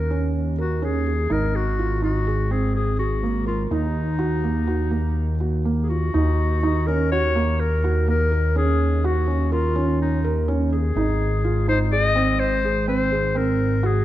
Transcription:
Already playing: analog synth bass D#2, clarinet A#4
0.10 felt piano C#4
0.58 clarinet F#4, felt piano A#4
0.82 felt piano C#4, clarinet G#4
1.06 felt piano G#4
1.30 analog synth bass G#1, felt piano D#4, clarinet A#4
1.56 clarinet F#4
1.79 felt piano F4
2.02 felt piano D#4, clarinet F#4
2.27 felt piano G#4
2.51 felt piano C4, clarinet G#4
2.76 clarinet G#4
2.99 clarinet F#4, felt piano G#4
3.23 felt piano A#3
3.46 clarinet F4, felt piano A#4
3.65 clarinet F4
3.71 analog synth bass D#2, felt piano D#4, clarinet D#4
4.19 felt piano F#4
4.44 felt piano A#3
4.67 felt piano F#4
4.91 felt piano A#3
5.40 felt piano F#4
5.65 felt piano A#3
5.83 clarinet G#4
5.89 felt piano F4, clarinet F#4
6.14 analog synth bass D#2, felt piano D#4
6.63 felt piano D#4
6.87 felt piano C#4, clarinet A#4
7.12 felt piano F#4, clarinet C#5
7.36 felt piano A#3
7.60 clarinet A#4
7.84 felt piano F#4
8.08 felt piano A#3, clarinet A#4
8.32 felt piano A#4
8.56 felt piano C#4, clarinet G#4
9.04 felt piano F#4, clarinet F#4
9.27 felt piano C#4
9.52 clarinet F4, felt piano A#4
9.76 felt piano C#4
10.02 clarinet D#4
10.24 felt piano A#4
10.48 felt piano C#4
10.72 clarinet G#4, felt piano G#4
10.96 analog synth bass G#1, felt piano D#4
11.44 felt piano F4
11.68 felt piano D#4, clarinet C5
11.92 felt piano G#4, clarinet D#5
12.15 felt piano C4
12.40 clarinet C5
12.65 felt piano G#4
12.88 felt piano C4, clarinet C5
13.12 felt piano G#4
13.35 felt piano C4, clarinet A#4
13.83 felt piano F#4, clarinet G#4

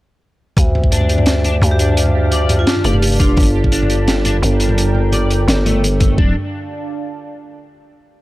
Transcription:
0.57 808-style bass D2, analog synth pad D4, synth texture G4, kick, closed hi-hat, mid tom
0.67 analog synth pad D5
0.75 mid tom
0.84 kick
0.92 clean electric guitar D4, closed hi-hat
0.98 analog synth pad A5, mid tom
1.09 closed hi-hat
1.18 mid tom
1.26 snare, closed hi-hat
1.31 analog synth pad F5
1.44 clean electric guitar D4, closed hi-hat, mid tom
1.62 808-style bass D2, closed hi-hat, mid tom
1.71 vibraphone G4
1.79 clean electric guitar D4, closed hi-hat
1.89 mid tom
1.97 closed hi-hat
2.06 mid tom
2.31 clean electric guitar D5, closed hi-hat, mid tom
2.49 closed hi-hat, mid tom
2.59 vibraphone F4
2.67 snare, closed hi-hat
2.76 mid tom
2.84 808-style bass F1, clean electric guitar D5, closed hi-hat
2.93 mid tom
3.02 closed hi-hat
3.07 closed hi-hat
3.12 closed hi-hat
3.16 clean electric guitar F4, closed hi-hat
3.20 vibraphone D4, kick, closed hi-hat, mid tom
3.29 vibraphone D4
3.37 808-style bass G1, analog synth pad G3, kick, closed hi-hat, mid tom
3.40 closed hi-hat
3.42 closed hi-hat
3.64 kick, mid tom
3.72 clean electric guitar D4, closed hi-hat
3.82 mid tom
3.90 closed hi-hat
4.00 analog synth pad A#4
4.08 analog synth pad G5, snare, closed hi-hat, mid tom
4.25 clean electric guitar D4, closed hi-hat, mid tom
4.43 808-style bass G1, closed hi-hat
4.60 clean electric guitar D4, closed hi-hat
4.69 mid tom
4.78 closed hi-hat
4.95 mid tom
5.12 clean electric guitar D5, closed hi-hat, mid tom
5.30 closed hi-hat
5.48 808-style bass G1, snare, closed hi-hat
5.58 mid tom
5.63 clean electric guitar A3, closed hi-hat, mid tom
5.69 mid tom
5.83 closed hi-hat, mid tom
6.00 clean electric guitar A3, kick, closed hi-hat, mid tom
6.18 808-style bass D1, clean electric guitar D4, analog synth pad D4, kick
6.24 analog synth pad D5
6.29 analog synth pad F5
6.34 analog synth pad A5

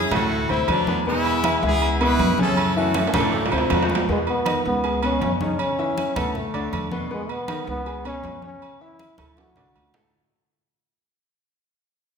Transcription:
Already playing: horn section C#4 E4 G#4
0.11 upright bass D2, grand piano A2 A3 A4, horn section A3 C4 F#4, high conga, low conga, low agogo
0.31 high conga
0.49 upright bass D2, grand piano C3 C4 C5, horn section E4, high conga, low agogo
0.68 upright bass E2, horn section F#3 A3 D4, high conga, low agogo
0.87 grand piano B3 B4 B5, high conga
1.06 grand piano B2 B3 B4, horn section G#3 B3 E4, high conga
1.25 high conga, low agogo
1.44 grand piano E3 E4 E5, high conga, low agogo
1.63 upright bass C#2, grand piano E3 E4 E5, horn section B3 E4 G#4
1.82 high conga, low agogo
2.00 grand piano B2 B3 B4, horn section E4 G#4 B4, high conga, low agogo
2.19 upright bass F#2, high conga, low agogo
2.38 grand piano C#3 C#4 C#5, horn section C#4 E4 A4, high conga
2.57 high conga, low agogo
2.76 grand piano E3 E4 E5, horn section A3 C#4 F#4, high conga
2.94 high conga, high timbale, low agogo
3.07 high timbale
3.14 upright bass D2, grand piano A2 A3 A4, horn section F#3 A3 D4, high conga, low conga, low agogo
3.20 high timbale
3.33 high conga, high timbale
3.46 low timbale
3.52 upright bass D2, grand piano C3 C4 C5, horn section E4, high conga, low agogo
3.58 low timbale
3.70 upright bass E2, horn section A3 C4 F#4, high conga, low timbale, low agogo
3.83 low timbale
3.89 grand piano B3 B4 B5, high conga
3.95 low timbale
4.08 upright bass E2, grand piano B2 B3 B4, trombone G#3, high conga
4.27 trombone B3, high conga, low agogo
4.46 grand piano D#3 D#4 D#5, high conga, low agogo
4.65 upright bass C#2, trombone B3
4.84 grand piano G#3 G#4 G#5, high conga, low agogo
5.03 grand piano B2 B3 B4, trombone C#4, high conga, low agogo
5.21 upright bass F#2, trombone C#4, high conga, low timbale, low agogo
5.41 grand piano C#3 C#4 C#5, trombone D#4, high conga
5.59 trombone C#4, high conga, low agogo
5.79 grand piano E3 E4 E5, high conga
5.98 high conga, low agogo
6.16 upright bass D2, grand piano A3 A4 A5, trombone B3, high conga, low conga, low agogo
6.35 trombone A3, high conga, low conga
6.54 upright bass D2, grand piano D3 D4 D5, high conga, low agogo
6.73 upright bass E2, high conga, low agogo
6.92 grand piano B2 B3 B4, high conga
7.11 grand piano B2 B3 B4, trombone G#3, high conga
7.29 trombone B3, high conga, low agogo
7.48 grand piano D#3 D#4 D#5, high conga, low agogo
7.67 upright bass C#2, trombone B3
7.86 grand piano G#3 G#4 G#5, high conga, low agogo
8.05 grand piano B2 B3 B4, trombone C#4, high conga, low agogo
8.24 upright bass F#2, high conga, low timbale, low agogo
8.42 grand piano C#3 C#4 C#5, trombone C#4, high conga
8.61 high conga, low agogo
8.80 grand piano E3 E4 E5, trombone E4, high conga
8.99 high conga, low agogo
9.18 upright bass D2, grand piano A3 A4 A5, trombone E4, high conga, low conga, low agogo
9.37 trombone F#4, high conga, high timbale
9.56 upright bass C2, grand piano D3 D4 D5, low conga, high timbale, low agogo
9.76 upright bass D2, low timbale, low agogo
9.94 grand piano A2 A3 A4, low conga, low timbale

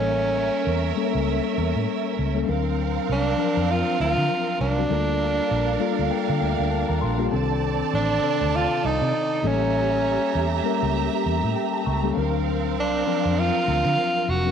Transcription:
Already playing: fingered electric bass A1, tine electric piano G3 A#3 C#4 A4, tenor saxophone C#4, string section C#4 A#4 E5
0.67 fingered electric bass E2
0.96 tine electric piano G3 A#3 C#4 A4
1.15 fingered electric bass C#2
1.58 fingered electric bass E2
1.75 fingered electric bass A2
2.19 fingered electric bass C#2
2.34 tine electric piano G3 A#3 C#4 A4
2.47 fingered electric bass D2, tine electric piano F#3 C4 D4 A#4, string section C4 A#4 F5
3.09 fingered electric bass C2, tenor saxophone D4
3.38 tine electric piano F3 C4 D4 A#4
3.57 fingered electric bass F2
3.71 tenor saxophone F4
4.00 fingered electric bass D2, tenor saxophone F4
4.18 fingered electric bass D3
4.60 fingered electric bass C2, tenor saxophone D4
4.77 tine electric piano F#3 C4 D4 F#4
4.89 fingered electric bass D2, tine electric piano G3 A#3 F4 A4, string section D4 A#4 F5
5.51 fingered electric bass A#1
5.79 tine electric piano G3 A#3 F4 A4 F5
5.99 fingered electric bass D2
6.11 tine electric piano G5
6.28 fingered electric bass D3, tine electric piano F5
6.40 fingered electric bass D2, tine electric piano G5
6.59 fingered electric bass D2
6.71 tine electric piano A5
6.89 fingered electric bass D#2, tine electric piano A#5
7.01 fingered electric bass A#1, tine electric piano C6
7.18 tine electric piano G3 A#3 F4 G4
7.31 fingered electric bass C2, tine electric piano D#3 C4 D4 A4, string section C4 D5 A5
7.94 fingered electric bass A1, tenor saxophone D4
8.22 tine electric piano C3 C4 A4 D5
8.41 fingered electric bass D2
8.56 tenor saxophone F4
8.85 fingered electric bass C2, tenor saxophone D#4
9.01 fingered electric bass C3
9.43 fingered electric bass A1, tine electric piano G3 A#3 C#4 A4, string section G4 E5 A#5
9.47 tenor saxophone C#4
10.35 fingered electric bass E2
10.64 tine electric piano G3 A#3 C#4 A#4
10.83 fingered electric bass C#2
11.26 fingered electric bass E2
11.44 fingered electric bass A2
11.56 tine electric piano G5
11.73 tine electric piano A5
11.86 fingered electric bass C#2, tine electric piano C#6
12.03 tine electric piano G3 A#3 C#4 A4
12.16 fingered electric bass D2, tine electric piano F#3 C4 D4 A#4, string section C4 A#4 F5
12.77 fingered electric bass C2, tenor saxophone D4
13.07 tine electric piano F3 C4 D4 A#4
13.25 fingered electric bass F2
13.40 tenor saxophone F4
13.68 fingered electric bass D2
13.85 fingered electric bass D3
14.29 fingered electric bass F1, tenor saxophone F#4
14.45 tine electric piano F#3 C4 D4 A#4

